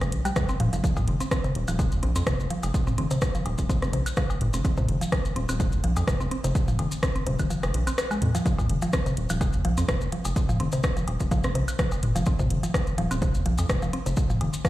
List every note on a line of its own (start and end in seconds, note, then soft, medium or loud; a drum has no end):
0.01 0.14 F1 loud
0.01 cross-stick medium
0.01 closed hi-hat soft
0.01 cowbell medium
0.01 maracas soft
0.12 0.21 A#1 medium
0.12 closed hi-hat loud
0.25 0.27 G3 loud
0.25 closed hi-hat medium
0.25 high woodblock medium
0.25 maracas medium
0.36 0.45 F2 medium
0.36 0.39 F3 medium
0.36 kick loud
0.36 cross-stick medium
0.36 closed hi-hat soft
0.36 maracas medium
0.49 0.53 C4 loud
0.49 maracas soft
0.60 0.69 D#1 loud
0.60 0.64 F3 medium
0.60 closed hi-hat loud
0.60 mid tom medium
0.73 0.80 F1 medium
0.73 0.76 F3 medium
0.73 closed hi-hat soft
0.73 maracas medium
0.84 0.86 F3 medium
0.84 kick loud
0.84 closed hi-hat soft
0.84 maracas medium
0.96 kick medium
0.96 mid tom medium
0.96 cowbell medium
0.96 maracas soft
1.08 1.17 F1 loud
1.08 closed hi-hat medium
1.08 high tom medium
1.20 1.23 C4 medium
1.20 closed hi-hat medium
1.20 maracas medium
1.31 1.36 C4 medium
1.31 kick loud
1.31 cross-stick medium
1.31 closed hi-hat soft
1.31 maracas medium
1.44 1.48 C3 loud
1.44 closed hi-hat soft
1.44 maracas soft
1.55 1.64 D#1 loud
1.55 closed hi-hat medium
1.68 1.93 D#1 loud
1.68 1.70 F3 medium
1.68 closed hi-hat medium
1.68 high woodblock medium
1.68 maracas medium
1.79 kick loud
1.79 closed hi-hat soft
1.79 cowbell medium
1.79 maracas medium
1.92 1.99 F2 medium
1.92 closed hi-hat soft
1.92 maracas soft
2.03 2.12 A#1 loud
2.03 2.05 C4 medium
2.03 closed hi-hat medium
2.16 2.23 F2 medium
2.16 2.19 C4 medium
2.16 closed hi-hat medium
2.16 maracas medium
2.27 2.36 F1 medium
2.27 2.31 C3 loud
2.27 kick loud
2.27 cross-stick medium
2.27 closed hi-hat soft
2.27 maracas medium
2.40 2.47 F1 medium
2.40 maracas soft
2.50 2.53 F3 medium
2.50 closed hi-hat medium
2.63 2.71 F1 medium
2.63 closed hi-hat soft
2.63 cowbell medium
2.63 maracas medium
2.74 kick loud
2.74 closed hi-hat soft
2.74 maracas medium
2.87 2.89 C4 medium
2.87 mid tom medium
2.87 maracas soft
2.98 3.07 F1 medium
2.98 3.02 C4 medium
2.98 closed hi-hat medium
2.98 high tom medium
3.11 3.14 C3 loud
3.11 closed hi-hat medium
3.11 maracas medium
3.22 kick loud
3.22 cross-stick medium
3.22 closed hi-hat soft
3.22 maracas medium
3.35 3.37 F3 medium
3.35 closed hi-hat soft
3.35 maracas soft
3.46 3.55 D#1 medium
3.46 closed hi-hat medium
3.46 cowbell medium
3.58 3.66 D#1 loud
3.58 kick medium
3.58 closed hi-hat medium
3.58 maracas medium
3.69 3.72 C4 medium
3.69 kick loud
3.69 closed hi-hat soft
3.69 maracas medium
3.82 3.95 F1 loud
3.82 3.86 C4 medium
3.82 cross-stick medium
3.82 closed hi-hat soft
3.82 maracas soft
3.93 4.02 A#1 medium
3.93 3.97 C3 loud
3.93 closed hi-hat medium
4.06 closed hi-hat medium
4.06 high woodblock medium
4.06 maracas medium
4.17 4.20 F3 medium
4.17 kick loud
4.17 cross-stick medium
4.17 closed hi-hat soft
4.17 maracas medium
4.30 cowbell medium
4.30 maracas soft
4.41 4.50 G1 medium
4.41 closed hi-hat medium
4.41 mid tom medium
4.54 4.61 F1 medium
4.54 4.56 C4 medium
4.54 closed hi-hat medium
4.54 maracas medium
4.65 4.69 C4 medium
4.65 kick loud
4.65 closed hi-hat soft
4.65 maracas medium
4.77 4.81 C3 loud
4.77 kick medium
4.77 mid tom medium
4.77 maracas soft
4.88 4.97 F1 loud
4.88 closed hi-hat medium
4.88 high tom medium
5.01 5.04 F3 medium
5.01 closed hi-hat medium
5.01 maracas medium
5.12 kick loud
5.12 cross-stick medium
5.12 closed hi-hat soft
5.12 cowbell medium
5.12 maracas medium
5.25 closed hi-hat soft
5.25 maracas soft
5.36 5.45 D#1 medium
5.36 5.39 C4 medium
5.36 closed hi-hat medium
5.49 5.74 D#1 loud
5.49 5.53 C4 medium
5.49 closed hi-hat medium
5.49 high woodblock medium
5.49 maracas medium
5.60 5.64 C3 loud
5.60 kick loud
5.60 closed hi-hat soft
5.60 maracas medium
5.72 5.80 F2 medium
5.72 closed hi-hat soft
5.72 maracas soft
5.84 5.93 A#1 loud
5.84 5.86 F3 medium
5.84 closed hi-hat medium
5.96 6.04 F2 medium
5.96 closed hi-hat medium
5.96 cowbell medium
5.96 maracas medium
6.08 6.16 F1 medium
6.08 kick loud
6.08 cross-stick medium
6.08 closed hi-hat soft
6.08 maracas medium
6.20 6.28 F1 medium
6.20 6.23 C4 medium
6.20 maracas soft
6.31 6.36 C4 medium
6.31 closed hi-hat medium
6.44 6.52 F1 medium
6.44 6.48 C3 loud
6.44 closed hi-hat medium
6.44 maracas medium
6.55 kick loud
6.55 closed hi-hat soft
6.55 maracas medium
6.68 6.70 F3 medium
6.68 mid tom medium
6.68 maracas soft
6.79 6.88 F1 loud
6.79 closed hi-hat medium
6.79 high tom medium
6.79 cowbell medium
6.92 closed hi-hat medium
6.92 maracas medium
7.03 7.05 C4 medium
7.03 kick loud
7.03 cross-stick medium
7.03 closed hi-hat soft
7.03 maracas medium
7.15 7.19 C4 medium
7.15 closed hi-hat soft
7.15 maracas soft
7.27 7.36 D#1 medium
7.27 7.31 C3 loud
7.27 closed hi-hat medium
7.39 7.47 D#1 loud
7.39 kick medium
7.39 closed hi-hat medium
7.39 high tom medium
7.39 high woodblock medium
7.39 maracas medium
7.50 7.53 F3 medium
7.50 closed hi-hat soft
7.50 maracas medium
7.63 7.71 F1 loud
7.63 cross-stick medium
7.63 closed hi-hat soft
7.63 cowbell medium
7.63 maracas soft
7.74 7.83 A#1 medium
7.74 closed hi-hat medium
7.87 7.91 C4 medium
7.87 closed hi-hat medium
7.87 high woodblock medium
7.87 maracas medium
7.98 cross-stick loud
7.98 closed hi-hat soft
7.98 maracas medium
8.11 8.14 G#3 medium
8.11 high woodblock medium
8.11 maracas soft
8.22 8.31 F2 medium
8.22 closed hi-hat medium
8.22 mid tom medium
8.35 8.37 F3 loud
8.35 closed hi-hat medium
8.35 maracas medium
8.46 8.48 F3 medium
8.46 kick loud
8.46 closed hi-hat soft
8.46 maracas medium
8.59 kick medium
8.59 mid tom medium
8.59 cowbell medium
8.59 maracas soft
8.69 8.78 F1 medium
8.69 closed hi-hat medium
8.69 high tom medium
8.82 8.86 F3 loud
8.82 closed hi-hat medium
8.82 maracas medium
8.93 8.97 C4 medium
8.93 kick loud
8.93 cross-stick loud
8.93 closed hi-hat soft
8.93 maracas medium
9.06 9.10 C3 loud
9.06 closed hi-hat soft
9.06 maracas soft
9.17 9.26 D#1 medium
9.17 closed hi-hat medium
9.30 9.55 D#1 loud
9.30 9.32 F3 medium
9.30 closed hi-hat medium
9.30 high woodblock medium
9.30 maracas medium
9.41 kick loud
9.41 closed hi-hat soft
9.41 cowbell medium
9.41 maracas medium
9.53 9.61 F2 medium
9.53 closed hi-hat soft
9.53 maracas soft
9.65 9.74 A#1 loud
9.65 9.69 F3 loud
9.65 closed hi-hat medium
9.77 9.85 F2 medium
9.77 9.81 C4 medium
9.77 closed hi-hat medium
9.77 maracas medium
9.88 9.97 F1 medium
9.88 9.93 C3 loud
9.88 kick loud
9.88 cross-stick loud
9.88 closed hi-hat soft
9.88 maracas medium
10.01 10.09 F1 medium
10.01 maracas soft
10.12 10.15 F3 medium
10.12 closed hi-hat medium
10.25 10.33 F1 medium
10.25 closed hi-hat medium
10.25 cowbell medium
10.25 maracas medium
10.36 kick loud
10.36 closed hi-hat soft
10.36 maracas medium
10.49 10.53 F3 loud
10.49 mid tom medium
10.49 maracas soft
10.60 10.69 F1 loud
10.60 10.64 C4 medium
10.60 closed hi-hat loud
10.60 high tom medium
10.72 10.76 C3 loud
10.72 closed hi-hat medium
10.72 maracas medium
10.83 kick loud
10.83 cross-stick loud
10.83 closed hi-hat soft
10.83 maracas medium
10.97 10.99 F3 medium
10.97 closed hi-hat soft
10.97 maracas soft
11.08 11.16 D#1 medium
11.08 closed hi-hat loud
11.08 cowbell medium
11.20 11.28 D#1 loud
11.20 kick medium
11.20 closed hi-hat medium
11.20 maracas medium
11.31 11.36 F3 loud
11.31 kick loud
11.31 closed hi-hat soft
11.31 maracas medium
11.44 11.57 F1 loud
11.44 11.48 C4 medium
11.44 cross-stick medium
11.44 closed hi-hat soft
11.44 maracas soft
11.55 11.64 A#1 medium
11.55 11.59 C3 loud
11.55 closed hi-hat medium
11.68 closed hi-hat medium
11.68 high woodblock medium
11.68 maracas medium
11.79 11.81 F3 medium
11.79 kick loud
11.79 cross-stick loud
11.79 closed hi-hat soft
11.79 maracas medium
11.91 cowbell medium
11.91 maracas soft
12.03 12.12 G1 medium
12.03 closed hi-hat loud
12.03 mid tom medium
12.16 12.23 F1 medium
12.16 12.19 F3 loud
12.16 closed hi-hat medium
12.16 maracas medium
12.26 12.31 C4 medium
12.26 kick loud
12.26 closed hi-hat soft
12.26 maracas medium
12.39 12.43 C3 loud
12.39 kick medium
12.39 mid tom medium
12.39 maracas soft
12.50 12.59 F1 loud
12.50 closed hi-hat loud
12.50 high tom medium
12.63 12.65 F3 medium
12.63 closed hi-hat medium
12.63 maracas medium
12.74 kick loud
12.74 cross-stick medium
12.74 closed hi-hat soft
12.74 cowbell medium
12.74 maracas medium
12.87 closed hi-hat soft
12.87 maracas soft
12.98 13.07 D#1 medium
12.98 13.02 F3 loud
12.98 closed hi-hat loud
13.11 13.36 D#1 loud
13.11 13.14 C4 medium
13.11 closed hi-hat medium
13.11 high woodblock medium
13.11 maracas medium
13.22 13.26 C3 loud
13.22 kick loud
13.22 closed hi-hat soft
13.22 maracas medium
13.35 13.42 F2 medium
13.35 closed hi-hat soft
13.35 maracas soft
13.46 13.55 A#1 loud
13.46 13.48 F3 medium
13.46 closed hi-hat loud
13.58 13.66 F2 medium
13.58 closed hi-hat medium
13.58 cowbell medium
13.58 maracas medium
13.69 13.78 F1 medium
13.69 kick loud
13.69 cross-stick loud
13.69 closed hi-hat soft
13.69 maracas medium
13.82 13.90 F1 medium
13.82 13.86 F3 loud
13.82 maracas soft
13.93 13.97 C4 medium
13.93 closed hi-hat medium
14.06 14.14 F1 loud
14.06 14.10 C3 loud
14.06 closed hi-hat soft
14.06 maracas medium
14.17 kick loud
14.17 closed hi-hat soft
14.17 maracas medium
14.30 14.32 F3 medium
14.30 mid tom medium
14.30 maracas soft
14.41 14.50 F1 loud
14.41 closed hi-hat medium
14.41 high tom medium
14.41 cowbell medium
14.53 closed hi-hat medium
14.53 maracas medium
14.65 14.69 F3 loud
14.65 kick loud
14.65 cross-stick medium
14.65 closed hi-hat soft
14.65 maracas medium